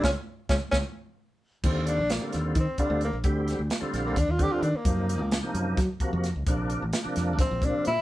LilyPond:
<<
  \new Staff \with { instrumentName = "Tenor saxophone" } { \time 7/8 \key ees \major \tempo 4 = 131 des'8 r8 des'8 des'8 r4. | c'8 d'8 bes8 r8 c'8 d'8 bes8 | r4. r16 bes16 d'16 f'16 g'16 f'16 d'16 bes16~ | bes4~ bes16 r2 r16 |
r2 c'8 d'8 fes'8 | }
  \new Staff \with { instrumentName = "Tonewheel organ" } { \time 7/8 \key ees \major <aes c' des'>8 r8 <aes c' des'>8 <aes c' des'>8 r4. | <d g c' f'>8. r8 <d g c' f'>8. r8 <d g c' f'>8. r16 | <d g c' g'>8. r8 <d g c' f'>8. r8 <d g c' d'>8. r16 | <c f bes ees'>8. r8 <c f bes ees'>8. r8 <c f bes ges'>8. r16 |
<c f bes d'>8. r8 <c f bes d'>8. r8 <c f bes c'>8. r16 | }
  \new Staff \with { instrumentName = "Fingered electric bass" } { \clef bass \time 7/8 \key ees \major des,16 r8. des,16 r16 des,16 r4. r16 | ees,8. bes,,8 r16 ees,8 ees16 r8 d,8 bes,,16 | d,8. d,16 r8 bes,,8 ees,16 ees,8 r16 ees16 r16 | ges,8. des,8 r16 ges,8 ges16 r8 f,8 des,16 |
bes,,8. a,,16 r8 f,8 bes,,16 bes,,8 r16 bes,16 r16 | }
  \new DrumStaff \with { instrumentName = "Drums" } \drummode { \time 7/8 <bd sn>4 <bd sn>8 <bd sn>8 r4. | <cymc bd>8 hh8 <hh sn>8 <hh sn>8 <hh bd>8 <hh bd>8 hh8 | <hh bd>8 <hh sn>8 <hh sn>8 <hh sn>8 <hh bd>8 <hh bd>8 hh8 | <hh bd>8 hh8 <hh sn>8 hh8 <hh bd sn>8 <hh bd>8 <hh sn>8 |
<hh bd>8 hh8 <hh sn>8 <hh sn>8 <hh bd sn>8 <hh bd>8 hh8 | }
>>